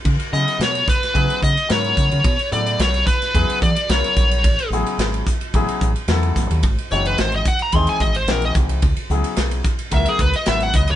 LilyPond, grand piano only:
\new Staff \with { instrumentName = "Grand piano" } { \time 4/4 \key cis \dorian \tempo 4 = 109 r8 <cis fis b e' gis'>4 r8 <cis fis b e' gis'>8 r8 <cis fis b e' ais'>4 | r8 <cis fis b e' a'>4 r8 <cis fis b e' gis'>8 r8 <cis fis b e' ais'>4 | r8 <cis fis b e' gis'>4 r8 <cis fis b e' gis'>8 r8 <cis fis b e' a'>4 | r8 <e gis bis dis' fis'>4 r8 <e gis bis dis' gis'>8 r8 <e gis bis dis' fis'>4 |
r8 <cis fis b e' gis'>4 r8 <cis fis b e' ais'>8 r8 <cis fis b e' b'>4 | }